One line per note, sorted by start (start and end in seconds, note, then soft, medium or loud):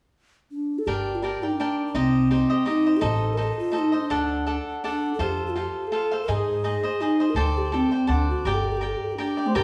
0.51 0.80 D4 medium
0.79 0.88 A4 medium
0.86 1.34 G1 medium
0.86 1.21 D4 medium
0.86 1.17 G4 medium
0.86 1.22 A#4 medium
0.86 1.23 D5 medium
0.86 1.23 G5 medium
1.15 1.25 F4 medium
1.22 1.43 D4 soft
1.22 1.44 G4 medium
1.22 1.43 A#4 soft
1.22 1.42 D5 soft
1.22 1.42 G5 soft
1.43 1.53 D#4 medium
1.43 1.59 A#4 soft
1.43 1.60 D5 soft
1.43 1.59 G5 soft
1.52 1.86 D4 medium
1.60 1.94 D4 soft
1.60 1.95 A#4 soft
1.60 1.95 D5 soft
1.60 1.95 G5 medium
1.87 1.96 D4 medium
1.94 2.41 C2 medium
1.94 2.67 C4 medium
1.94 2.30 D#4 medium
1.94 2.29 G4 medium
1.94 2.30 C5 medium
1.94 2.31 D#5 medium
2.31 2.51 D#4 soft
2.31 2.49 G4 soft
2.31 2.49 C5 soft
2.31 2.48 D#5 soft
2.50 2.65 G4 soft
2.50 2.66 C5 soft
2.50 2.66 D#5 soft
2.66 2.86 D#4 soft
2.66 2.98 D#4 medium
2.66 2.86 G4 soft
2.66 2.85 C5 soft
2.66 2.85 D#5 medium
2.86 3.01 G4 soft
2.86 3.01 C5 soft
2.86 3.00 D#5 soft
2.97 3.00 G4 medium
2.97 3.01 A4 medium
3.01 3.48 A1 medium
3.01 3.36 D#4 medium
3.01 3.37 A4 medium
3.01 3.35 A4 medium
3.01 3.37 C5 medium
3.01 3.37 D#5 medium
3.33 3.70 D#4 soft
3.33 3.44 A#4 medium
3.37 3.72 A4 soft
3.37 3.72 C5 soft
3.37 3.73 D#5 soft
3.43 3.59 A4 medium
3.59 3.80 F4 medium
3.72 3.92 D#4 medium
3.72 3.93 A4 soft
3.72 3.92 C5 soft
3.72 3.91 D#5 soft
3.78 3.96 D#4 medium
3.92 4.09 A4 soft
3.92 4.10 C5 soft
3.92 4.09 D#5 soft
3.97 4.53 D4 medium
4.10 4.57 D2 medium
4.10 4.45 D4 medium
4.10 4.45 A4 medium
4.10 4.46 D5 medium
4.10 4.47 F#5 medium
4.46 4.83 D4 soft
4.46 4.83 A4 soft
4.46 4.83 D5 soft
4.46 4.83 F#5 soft
4.84 5.19 D4 soft
4.84 5.10 D4 medium
4.84 5.18 A4 soft
4.84 5.19 D5 soft
4.84 5.20 F#5 soft
5.14 5.25 A4 medium
5.19 5.66 F2 medium
5.19 5.54 F4 medium
5.19 5.55 A4 soft
5.19 5.56 C5 medium
5.19 5.56 F5 medium
5.23 5.46 G4 medium
5.46 5.61 F4 medium
5.46 5.51 G4 soft
5.55 5.91 F4 soft
5.55 5.89 G4 medium
5.55 5.91 A4 soft
5.55 5.93 C5 soft
5.55 5.92 F5 soft
5.87 6.21 A4 medium
5.92 6.11 F4 soft
5.92 6.11 A4 soft
5.92 6.11 C5 soft
5.92 6.10 F5 soft
6.11 6.28 A4 soft
6.11 6.27 C5 soft
6.11 6.28 F5 soft
6.23 6.32 A#4 medium
6.28 6.75 G#2 medium
6.28 6.63 D#4 medium
6.28 6.63 G#4 medium
6.28 7.03 G#4 medium
6.28 6.63 C5 medium
6.28 6.64 D#5 medium
6.64 6.83 D#4 soft
6.64 6.83 G#4 medium
6.64 6.83 C5 soft
6.64 6.82 D#5 medium
6.83 7.00 G#4 soft
6.83 7.00 C5 soft
6.83 7.00 D#5 soft
7.00 7.19 D#4 soft
7.00 7.32 D#4 medium
7.00 7.20 G#4 medium
7.00 7.19 C5 soft
7.00 7.19 D#5 medium
7.20 7.36 G#4 soft
7.20 7.35 C5 soft
7.20 7.36 D#5 soft
7.30 7.37 A#4 medium
7.35 7.82 D2 medium
7.35 7.71 A4 medium
7.35 7.59 A4 medium
7.35 7.71 C5 medium
7.35 7.73 D5 medium
7.35 7.72 G5 medium
7.58 7.76 G4 medium
7.72 7.93 C4 medium
7.72 7.91 A4 soft
7.72 7.92 C5 soft
7.72 7.90 D5 soft
7.72 7.91 G5 soft
7.91 8.06 C5 soft
7.91 8.07 D5 soft
7.91 8.08 G5 soft
7.95 8.13 C4 medium
8.07 8.32 D2 medium
8.07 8.44 A4 soft
8.07 8.44 C5 medium
8.07 8.47 D5 soft
8.07 8.45 F#5 medium
8.11 8.29 D4 medium
8.30 8.48 F#4 medium
8.45 8.93 G1 medium
8.45 8.56 G4 medium
8.45 8.81 G4 medium
8.45 8.80 A#4 medium
8.45 8.81 D5 medium
8.45 8.82 G5 medium
8.55 8.66 A4 soft
8.64 8.73 G4 medium
8.72 8.79 A4 medium
8.77 8.88 G4 medium
8.77 9.17 A#4 soft
8.82 9.18 G4 soft
8.82 9.19 D5 soft
8.82 9.19 G5 soft
8.86 8.99 A4 soft
8.97 9.06 G4 soft
9.04 9.14 A4 medium
9.12 9.16 G4 medium
9.17 9.48 D4 medium
9.17 9.38 G4 medium
9.17 9.49 G4 medium
9.17 9.38 A#4 soft
9.17 9.36 D5 medium
9.17 9.37 G5 soft
9.37 9.54 G4 soft
9.37 9.55 D5 soft
9.37 9.55 G5 soft
9.46 9.57 A3 medium
9.46 9.57 C5 medium
9.55 9.63 G1 medium
9.55 9.63 G4 medium
9.55 9.63 A#4 medium
9.55 9.63 D5 medium
9.55 9.63 G5 medium